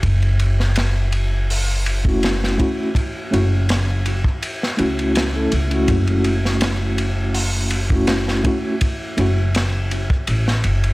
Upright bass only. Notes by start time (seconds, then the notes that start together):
0.03 F#1
3.33 F#1
4.80 C#2
5.53 C#2
5.89 F#1
9.18 F#1
10.28 A1
10.65 F#1